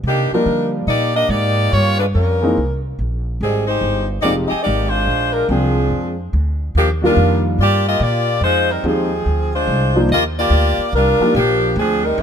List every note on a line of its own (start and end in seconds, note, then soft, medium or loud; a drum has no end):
0.04 0.29 C3 medium
0.04 0.31 D#3 medium
0.04 0.31 A#3 medium
0.04 0.31 D4 medium
0.04 0.31 G4 loud
0.31 0.86 F3 medium
0.31 0.87 G3 medium
0.31 0.72 G3 medium
0.31 0.87 A#3 medium
0.31 0.72 D4 medium
0.31 0.72 D#4 medium
0.31 0.87 F4 medium
0.31 0.72 A#4 medium
0.31 0.87 D5 medium
0.31 muted upright bass stroke soft
0.46 0.86 D3 medium
0.87 1.28 A#2 medium
0.87 1.14 A#3 medium
0.87 1.13 D#4 medium
0.87 1.14 G4 medium
0.87 1.14 D5 loud
1.16 1.28 A#3 medium
1.16 1.30 D4 medium
1.16 1.28 G4 medium
1.16 1.30 D#5 loud
1.29 1.70 G#2 medium
1.29 1.71 A#3 medium
1.29 1.72 D#4 medium
1.29 1.71 G4 medium
1.29 1.72 D5 loud
1.72 2.13 G2 medium
1.72 1.99 A#3 medium
1.72 1.98 F4 medium
1.72 1.99 G4 medium
1.72 1.99 C#5 loud
1.99 2.06 G#3 medium
1.99 2.06 D4 medium
1.99 2.06 F4 medium
1.99 2.06 B4 medium
2.14 2.55 F2 medium
2.14 2.53 G3 medium
2.14 2.53 C#4 medium
2.14 2.54 F4 medium
2.14 2.79 A#4 medium
2.41 2.55 E3 medium
2.41 2.55 G#3 medium
2.41 2.55 A#3 medium
2.41 2.56 C4 medium
2.41 2.56 D#4 medium
2.57 2.97 C2 medium
2.99 3.39 A#1 medium
3.41 3.81 G#1 medium
3.41 3.67 D#3 medium
3.41 3.67 G3 medium
3.41 3.67 C4 medium
3.41 3.66 G#4 medium
3.67 4.06 G#3 medium
3.67 4.06 D#4 medium
3.67 4.07 G4 medium
3.67 4.06 C5 medium
3.81 4.22 G1 medium
4.22 4.49 F1 medium
4.22 4.48 F3 medium
4.22 4.48 G#3 medium
4.22 4.34 A#3 medium
4.22 4.48 C4 medium
4.22 4.34 D#4 medium
4.22 4.49 D#4 medium
4.22 4.35 G4 medium
4.22 4.49 G4 medium
4.22 4.34 D5 medium
4.48 4.63 C4 medium
4.48 4.62 G4 medium
4.48 4.63 G#4 medium
4.48 4.63 D#5 medium
4.48 muted upright bass stroke soft
4.63 5.06 G#1 loud
4.63 4.89 A#3 medium
4.63 4.89 D#4 medium
4.63 4.89 G4 medium
4.63 4.89 D5 loud
4.89 5.31 G#3 medium
4.89 5.32 D4 medium
4.89 5.32 F4 medium
4.89 5.33 C5 loud
5.07 5.48 A#1 medium
5.33 5.48 G#3 medium
5.33 5.48 D4 medium
5.33 5.49 F4 medium
5.33 5.48 A#4 medium
5.49 5.90 C2 medium
5.49 6.13 F3 medium
5.49 6.15 F3 medium
5.49 6.13 G#3 medium
5.49 6.14 C4 medium
5.49 6.13 C4 medium
5.49 6.14 D4 medium
5.49 6.13 D4 medium
5.49 6.15 G#4 medium
5.49 6.14 G5 medium
5.90 6.31 F2 medium
6.33 6.74 D2 medium
6.75 7.15 D#2 medium
6.75 6.89 F3 medium
6.75 6.89 A#3 medium
6.75 6.89 D4 medium
6.75 6.89 G4 medium
7.02 7.56 D#3 medium
7.02 7.56 G3 medium
7.02 7.56 A#3 medium
7.02 7.56 D4 medium
7.02 7.57 F4 medium
7.02 7.43 A#4 medium
7.06 7.43 G3 medium
7.06 7.43 D4 medium
7.06 7.43 F4 medium
7.17 7.57 F2 medium
7.58 7.99 G2 medium
7.58 7.85 A#3 medium
7.58 7.85 F4 medium
7.58 7.85 G4 loud
7.58 7.85 D5 loud
7.88 8.01 A#3 medium
7.88 8.01 F4 medium
7.88 8.01 G4 medium
7.88 8.01 D#5 loud
8.00 8.40 A#2 medium
8.00 8.43 A#3 medium
8.00 8.43 F4 medium
8.00 8.43 G4 medium
8.00 8.43 D5 loud
8.41 8.82 F2 medium
8.41 8.68 G#3 medium
8.41 8.68 D#4 medium
8.41 8.68 F4 medium
8.41 8.68 C5 loud
8.71 8.85 G3 medium
8.71 8.85 C4 medium
8.71 8.85 D#4 medium
8.71 8.85 A#4 medium
8.84 9.24 D#2 medium
8.84 9.08 F3 medium
8.84 9.50 F3 medium
8.84 9.09 G#3 medium
8.84 9.09 C4 medium
8.84 9.50 C4 medium
8.84 9.09 D#4 medium
8.84 9.25 D#4 medium
8.84 9.09 G4 medium
8.84 9.50 G#4 medium
9.26 9.66 D2 medium
9.55 10.06 G#3 medium
9.55 10.07 D4 medium
9.55 10.07 F4 medium
9.55 10.07 C5 medium
9.67 10.08 C2 medium
9.95 10.08 F3 medium
9.95 10.08 A#3 medium
9.95 10.08 D4 medium
9.95 10.08 D#4 medium
9.95 10.09 F4 medium
10.09 10.50 D#2 medium
10.09 10.24 A#3 medium
10.09 10.24 F4 medium
10.09 10.24 G4 medium
10.09 10.24 D#5 loud
10.38 10.90 A#3 medium
10.38 10.90 F4 medium
10.38 10.90 G4 medium
10.38 10.90 D5 loud
10.50 10.76 D2 medium
10.78 muted upright bass stroke soft
10.92 11.18 C2 medium
10.92 11.36 G3 medium
10.92 11.35 D4 medium
10.92 11.36 F4 medium
10.92 11.36 A#4 loud
11.20 11.33 F3 medium
11.20 11.33 A#3 medium
11.20 11.33 D4 medium
11.20 11.34 D#4 medium
11.20 11.34 G4 medium
11.20 muted upright bass stroke soft
11.35 11.75 A#1 loud
11.35 11.74 F3 medium
11.35 11.74 A#3 medium
11.35 11.74 D4 medium
11.35 11.74 G4 medium
11.76 12.16 D2 medium
11.76 12.04 F3 medium
11.76 12.03 C4 medium
11.76 12.04 D4 medium
11.76 12.04 G#4 medium
12.04 12.19 G3 medium
12.04 12.18 C4 medium
12.04 12.18 D#4 medium
12.04 12.18 A#4 medium
12.18 12.22 F2 loud
12.18 12.22 G#3 medium
12.18 12.22 F4 medium